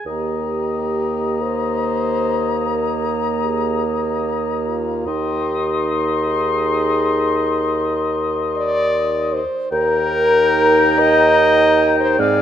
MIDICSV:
0, 0, Header, 1, 6, 480
1, 0, Start_track
1, 0, Key_signature, -3, "major"
1, 0, Tempo, 895522
1, 34, Time_signature, 12, 3, 24, 8
1, 996, Tempo, 803213
1, 2916, Tempo, 776197
1, 5796, Tempo, 837989
1, 6756, Tempo, 791557
1, 7371, End_track
2, 0, Start_track
2, 0, Title_t, "Flute"
2, 0, Program_c, 0, 73
2, 43, Note_on_c, 0, 82, 52
2, 2915, Note_on_c, 0, 84, 61
2, 2924, Note_off_c, 0, 82, 0
2, 5626, Note_off_c, 0, 84, 0
2, 5793, Note_on_c, 0, 82, 78
2, 7227, Note_on_c, 0, 80, 79
2, 7237, Note_off_c, 0, 82, 0
2, 7371, Note_off_c, 0, 80, 0
2, 7371, End_track
3, 0, Start_track
3, 0, Title_t, "Oboe"
3, 0, Program_c, 1, 68
3, 34, Note_on_c, 1, 75, 46
3, 2813, Note_off_c, 1, 75, 0
3, 2915, Note_on_c, 1, 75, 60
3, 5601, Note_off_c, 1, 75, 0
3, 5792, Note_on_c, 1, 79, 81
3, 7235, Note_on_c, 1, 77, 87
3, 7244, Note_off_c, 1, 79, 0
3, 7371, Note_off_c, 1, 77, 0
3, 7371, End_track
4, 0, Start_track
4, 0, Title_t, "French horn"
4, 0, Program_c, 2, 60
4, 34, Note_on_c, 2, 67, 82
4, 759, Note_on_c, 2, 72, 93
4, 767, Note_off_c, 2, 67, 0
4, 1474, Note_on_c, 2, 70, 69
4, 1483, Note_off_c, 2, 72, 0
4, 1708, Note_on_c, 2, 67, 63
4, 1717, Note_off_c, 2, 70, 0
4, 1947, Note_on_c, 2, 68, 70
4, 1956, Note_off_c, 2, 67, 0
4, 2190, Note_on_c, 2, 67, 79
4, 2199, Note_off_c, 2, 68, 0
4, 2578, Note_off_c, 2, 67, 0
4, 2680, Note_on_c, 2, 65, 76
4, 2919, Note_on_c, 2, 67, 96
4, 2928, Note_off_c, 2, 65, 0
4, 3467, Note_off_c, 2, 67, 0
4, 3629, Note_on_c, 2, 68, 93
4, 4817, Note_off_c, 2, 68, 0
4, 5076, Note_on_c, 2, 74, 119
4, 5553, Note_on_c, 2, 72, 94
4, 5562, Note_off_c, 2, 74, 0
4, 5791, Note_off_c, 2, 72, 0
4, 5795, Note_on_c, 2, 70, 127
4, 6520, Note_on_c, 2, 75, 127
4, 6528, Note_off_c, 2, 70, 0
4, 7111, Note_off_c, 2, 75, 0
4, 7115, Note_on_c, 2, 72, 113
4, 7234, Note_on_c, 2, 74, 120
4, 7243, Note_off_c, 2, 72, 0
4, 7371, Note_off_c, 2, 74, 0
4, 7371, End_track
5, 0, Start_track
5, 0, Title_t, "Clarinet"
5, 0, Program_c, 3, 71
5, 32, Note_on_c, 3, 58, 53
5, 2890, Note_off_c, 3, 58, 0
5, 2913, Note_on_c, 3, 63, 64
5, 5600, Note_off_c, 3, 63, 0
5, 5798, Note_on_c, 3, 63, 86
5, 7231, Note_on_c, 3, 60, 75
5, 7240, Note_off_c, 3, 63, 0
5, 7371, Note_off_c, 3, 60, 0
5, 7371, End_track
6, 0, Start_track
6, 0, Title_t, "Bassoon"
6, 0, Program_c, 4, 70
6, 31, Note_on_c, 4, 39, 58
6, 2889, Note_off_c, 4, 39, 0
6, 2911, Note_on_c, 4, 39, 68
6, 5599, Note_off_c, 4, 39, 0
6, 5789, Note_on_c, 4, 39, 89
6, 7208, Note_off_c, 4, 39, 0
6, 7232, Note_on_c, 4, 44, 91
6, 7371, Note_off_c, 4, 44, 0
6, 7371, End_track
0, 0, End_of_file